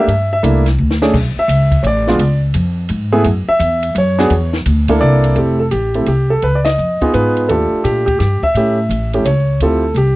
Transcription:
0.00 0.30 E5 loud
0.08 0.42 G2 medium
0.08 ride medium
0.33 0.65 E5 medium
0.43 0.78 C2 medium
0.43 0.64 A3 medium
0.43 0.64 A#3 medium
0.43 0.64 D4 medium
0.43 0.64 E4 medium
0.43 hi-hat pedal medium
0.43 ride medium
0.66 snare soft
0.66 ride soft
0.78 1.13 D2 medium
0.91 snare medium
1.02 1.13 A3 medium
1.02 1.13 C#4 medium
1.02 1.13 D4 medium
1.02 1.13 G#4 medium
1.02 snare medium
1.13 1.35 B1 medium
1.13 kick medium
1.13 crash medium
1.36 1.83 E5 loud
1.36 muted upright bass stroke soft
1.48 1.83 C#2 medium
1.48 hi-hat pedal medium
1.48 ride medium
1.72 kick medium
1.72 ride soft
1.83 2.18 A1 medium
1.83 1.85 C#5 medium
1.83 2.40 D5 medium
1.83 ride medium
2.07 2.19 G#3 medium
2.07 2.19 B3 medium
2.07 2.19 D4 medium
2.07 2.19 F4 medium
2.07 snare soft
2.19 2.54 C#2 medium
2.19 ride medium
2.54 2.89 F2 medium
2.54 hi-hat pedal soft
2.54 ride medium
2.89 3.24 G#2 loud
2.89 ride medium
3.12 3.24 A3 medium
3.12 3.24 B3 medium
3.12 3.24 E4 medium
3.12 3.24 G#4 medium
3.24 3.47 F#2 medium
3.24 ride medium
3.49 3.93 E5 loud
3.49 muted upright bass stroke soft
3.59 3.94 E2 medium
3.59 hi-hat pedal medium
3.59 ride medium
3.83 ride medium
3.95 4.30 F#2 medium
3.95 4.51 C#5 medium
3.95 ride medium
4.18 4.30 B3 medium
4.18 4.30 D4 medium
4.18 4.30 F#4 medium
4.18 4.31 G#4 medium
4.18 snare soft
4.30 4.65 E2 medium
4.30 ride medium
4.53 snare medium
4.66 5.00 D2 medium
4.66 hi-hat pedal medium
4.66 ride medium
4.88 5.35 A#3 medium
4.88 5.35 D4 medium
4.88 5.35 E4 medium
4.88 5.34 A4 medium
4.88 kick medium
4.88 ride medium
5.01 5.35 C2 medium
5.01 5.38 D5 medium
5.01 hi-hat pedal medium
5.24 ride soft
5.36 5.71 F1 medium
5.36 5.58 A3 medium
5.36 5.58 C4 medium
5.36 5.58 E4 soft
5.36 5.58 G4 medium
5.36 5.58 A4 medium
5.36 ride soft
5.60 5.65 A4 medium
5.71 6.06 A1 medium
5.71 6.05 G4 medium
5.71 hi-hat pedal soft
5.71 ride medium
5.94 6.07 A3 medium
5.94 6.07 C4 soft
5.94 6.07 E4 soft
5.94 6.07 A4 medium
5.94 ride soft
6.06 6.42 C2 medium
6.06 6.31 G4 medium
6.06 ride medium
6.30 6.43 A4 medium
6.42 6.77 C#2 medium
6.42 6.58 B4 medium
6.42 ride soft
6.55 6.65 D5 medium
6.65 7.10 D#5 medium
6.65 snare medium
6.65 ride medium
6.78 7.00 F2 medium
6.78 hi-hat pedal medium
7.01 7.47 B3 medium
7.01 7.47 D#4 medium
7.01 7.47 F4 medium
7.01 7.47 G#4 medium
7.01 muted upright bass stroke soft
7.01 kick medium
7.01 ride soft
7.14 7.48 G#2 medium
7.14 7.50 B4 medium
7.14 hi-hat pedal medium
7.14 ride medium
7.37 ride soft
7.49 7.71 D#2 medium
7.49 8.03 A3 medium
7.49 8.04 D4 soft
7.49 8.04 F4 soft
7.49 7.83 G4 medium
7.49 7.85 A4 medium
7.49 ride soft
7.73 muted upright bass stroke soft
7.84 8.19 A#2 medium
7.84 8.05 G4 medium
7.84 hi-hat pedal medium
7.84 ride medium
8.06 8.17 G4 medium
8.06 kick medium
8.06 ride soft
8.19 8.41 G2 medium
8.19 8.41 G4 medium
8.19 snare soft
8.19 ride medium
8.42 9.10 E5 loud
8.42 muted upright bass stroke soft
8.42 kick soft
8.54 8.89 A2 medium
8.54 8.77 A3 medium
8.54 8.77 C#4 soft
8.54 8.77 E4 soft
8.54 8.77 G4 medium
8.54 ride medium
8.89 9.24 A1 medium
8.89 hi-hat pedal medium
8.89 ride medium
9.13 9.25 A3 medium
9.13 9.25 C#4 medium
9.13 9.25 E4 medium
9.13 9.25 G4 medium
9.13 ride soft
9.24 9.60 C#2 medium
9.24 9.62 C#5 medium
9.24 hi-hat pedal medium
9.24 ride medium
9.60 9.94 D2 medium
9.60 9.82 C4 medium
9.60 9.82 E4 medium
9.60 9.83 F4 soft
9.60 9.83 G4 medium
9.60 9.95 A4 medium
9.60 ride medium
9.94 10.16 C2 medium
9.94 10.16 G4 medium
9.94 hi-hat pedal medium
9.94 ride medium

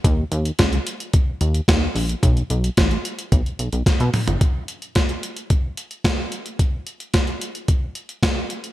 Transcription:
0.04 0.24 D#2 loud
0.04 kick loud
0.04 closed hi-hat medium
0.32 0.51 D#2 loud
0.32 closed hi-hat medium
0.45 closed hi-hat medium
0.59 0.79 C#2 loud
0.59 kick loud
0.59 snare loud
0.59 closed hi-hat medium
0.73 closed hi-hat soft
0.87 closed hi-hat medium
1.00 closed hi-hat medium
1.13 kick loud
1.13 closed hi-hat medium
1.41 1.61 D#2 medium
1.41 closed hi-hat medium
1.54 closed hi-hat medium
1.68 1.88 D#2 medium
1.68 kick loud
1.68 snare loud
1.68 closed hi-hat medium
1.95 2.15 A#1 medium
1.95 open hi-hat medium
2.09 closed hi-hat medium
2.23 2.43 B1 loud
2.23 kick loud
2.23 closed hi-hat loud
2.37 closed hi-hat soft
2.50 2.70 B1 loud
2.50 closed hi-hat medium
2.64 closed hi-hat medium
2.77 2.97 A1 loud
2.77 kick loud
2.77 snare loud
2.77 closed hi-hat loud
2.91 closed hi-hat soft
3.05 closed hi-hat medium
3.19 closed hi-hat medium
3.32 3.42 B1 medium
3.32 kick loud
3.32 closed hi-hat medium
3.46 closed hi-hat soft
3.59 3.69 B1 medium
3.59 closed hi-hat medium
3.73 3.83 B1 medium
3.73 closed hi-hat soft
3.86 kick loud
3.86 snare medium
3.86 closed hi-hat medium
4.00 4.10 B2 loud
4.00 closed hi-hat soft
4.14 mid tom medium
4.14 open hi-hat medium
4.27 4.37 G1 medium
4.27 closed hi-hat medium
4.27 floor tom medium
4.41 kick loud
4.41 closed hi-hat medium
4.68 closed hi-hat medium
4.82 closed hi-hat soft
4.95 kick medium
4.95 snare loud
4.95 closed hi-hat medium
5.09 closed hi-hat soft
5.23 closed hi-hat medium
5.37 closed hi-hat medium
5.50 kick loud
5.50 closed hi-hat medium
5.77 closed hi-hat medium
5.91 closed hi-hat soft
6.04 kick loud
6.04 snare loud
6.04 closed hi-hat medium
6.32 closed hi-hat medium
6.46 closed hi-hat medium
6.59 kick loud
6.59 closed hi-hat medium
6.87 closed hi-hat medium
7.00 closed hi-hat soft
7.14 kick loud
7.14 snare loud
7.14 closed hi-hat medium
7.27 closed hi-hat soft
7.41 closed hi-hat medium
7.55 closed hi-hat medium
7.68 kick loud
7.68 closed hi-hat medium
7.95 closed hi-hat medium
8.09 closed hi-hat soft
8.23 kick loud
8.23 snare loud
8.23 closed hi-hat medium
8.50 closed hi-hat medium
8.64 closed hi-hat medium

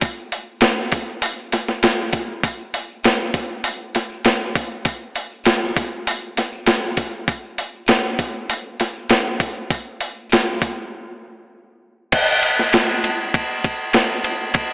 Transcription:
0.01 kick loud
0.01 open hi-hat medium
0.01 tambourine soft
0.20 tambourine soft
0.32 open hi-hat medium
0.32 tambourine medium
0.61 snare loud
0.61 open hi-hat medium
0.61 tambourine medium
0.79 tambourine soft
0.92 kick medium
0.92 open hi-hat medium
0.92 tambourine medium
1.09 tambourine soft
1.22 open hi-hat medium
1.22 tambourine soft
1.39 tambourine soft
1.52 snare soft
1.52 open hi-hat medium
1.52 tambourine soft
1.68 snare soft
1.68 tambourine medium
1.83 snare loud
1.83 open hi-hat medium
1.83 tambourine medium
2.00 tambourine soft
2.13 kick medium
2.13 open hi-hat medium
2.44 kick loud
2.44 open hi-hat medium
2.59 tambourine soft
2.74 open hi-hat medium
2.74 tambourine medium
2.90 tambourine soft
3.03 snare loud
3.03 open hi-hat medium
3.03 tambourine loud
3.20 tambourine soft
3.34 kick medium
3.34 open hi-hat soft
3.34 tambourine medium
3.64 open hi-hat medium
3.64 tambourine soft
3.80 tambourine soft
3.95 snare soft
3.95 open hi-hat medium
4.10 tambourine medium
4.25 snare loud
4.25 open hi-hat medium
4.25 tambourine medium
4.55 kick medium
4.55 open hi-hat medium
4.55 tambourine medium
4.85 kick loud
4.85 open hi-hat medium
4.99 tambourine soft
5.15 open hi-hat medium
5.15 tambourine medium
5.30 tambourine soft
5.44 snare loud
5.44 open hi-hat medium
5.44 tambourine medium
5.61 tambourine soft
5.76 kick medium
5.76 open hi-hat medium
5.76 tambourine medium
6.06 open hi-hat medium
6.06 tambourine soft
6.21 tambourine soft
6.37 snare soft
6.37 open hi-hat medium
6.52 tambourine medium
6.66 snare loud
6.66 open hi-hat medium
6.66 tambourine loud
6.97 kick medium
6.97 open hi-hat medium
6.97 tambourine medium
7.28 kick loud
7.28 open hi-hat medium
7.43 tambourine soft
7.58 open hi-hat medium
7.58 tambourine medium
7.73 tambourine soft
7.86 snare loud
7.86 open hi-hat medium
7.86 tambourine loud
8.02 tambourine soft
8.18 kick medium
8.18 open hi-hat medium
8.18 tambourine medium
8.48 open hi-hat medium
8.48 tambourine soft
8.62 tambourine soft
8.80 snare soft
8.80 open hi-hat soft
8.93 tambourine medium
9.09 snare loud
9.09 open hi-hat medium
9.09 tambourine medium
9.40 kick medium
9.40 open hi-hat medium
9.40 tambourine medium
9.71 kick loud
9.71 open hi-hat medium
9.71 tambourine soft
10.01 open hi-hat medium
10.01 tambourine medium
10.15 tambourine soft
10.29 snare loud
10.29 open hi-hat medium
10.29 tambourine medium
10.46 tambourine soft
10.60 kick medium
10.60 open hi-hat medium
10.60 tambourine medium
10.75 tambourine soft
12.12 kick loud
12.12 crash loud
12.12 ride loud
12.43 ride medium
12.43 tambourine medium
12.58 snare soft
12.58 tambourine soft
12.73 snare loud
12.73 ride loud
12.73 tambourine loud
13.04 ride medium
13.04 tambourine medium
13.20 tambourine soft
13.34 kick loud
13.34 ride loud
13.34 tambourine soft
13.64 kick medium
13.64 ride medium
13.64 tambourine medium
13.93 snare loud
13.93 ride medium
13.93 tambourine loud
14.09 tambourine medium
14.24 ride medium
14.24 tambourine soft
14.41 tambourine soft
14.54 kick loud
14.54 ride loud

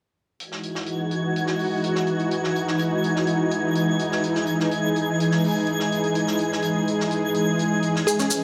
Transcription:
0.39 8.03 E3 medium
0.39 8.44 G#3 medium
0.39 8.03 D#4 medium
0.39 4.19 F#4 medium
0.39 8.44 G#6 medium
0.39 closed hi-hat medium
0.52 snare soft
0.63 closed hi-hat medium
0.75 snare soft
0.86 closed hi-hat medium
1.11 closed hi-hat medium
1.36 closed hi-hat medium
1.47 snare soft
1.59 open hi-hat medium
1.84 closed hi-hat medium
1.95 snare soft
2.07 closed hi-hat medium
2.19 closed hi-hat soft
2.31 closed hi-hat medium
2.44 snare soft
2.56 closed hi-hat medium
2.68 snare soft
2.79 closed hi-hat medium
3.04 closed hi-hat medium
3.16 snare soft
3.27 closed hi-hat medium
3.51 closed hi-hat medium
3.75 closed hi-hat medium
3.99 closed hi-hat medium
4.12 snare soft
4.23 8.44 G#4 medium
4.23 closed hi-hat medium
4.35 snare soft
4.47 closed hi-hat medium
4.60 snare soft
4.71 closed hi-hat medium
4.96 closed hi-hat medium
5.20 closed hi-hat medium
5.31 snare soft
5.44 open hi-hat medium
5.67 closed hi-hat medium
5.80 snare soft
5.92 closed hi-hat medium
6.04 closed hi-hat soft
6.15 closed hi-hat medium
6.27 snare soft
6.39 closed hi-hat medium
6.52 snare medium
6.62 closed hi-hat medium
6.88 closed hi-hat medium
7.00 snare soft
7.11 closed hi-hat medium
7.34 closed hi-hat medium
7.59 closed hi-hat medium
7.82 closed hi-hat medium
7.96 snare medium
8.06 8.44 E3 medium
8.06 8.44 C#4 medium
8.06 8.16 G#4 medium
8.06 closed hi-hat medium
8.06 maracas soft
8.19 8.28 C#4 medium
8.19 snare soft
8.19 maracas soft
8.31 8.40 C#4 medium
8.31 closed hi-hat medium
8.31 maracas medium

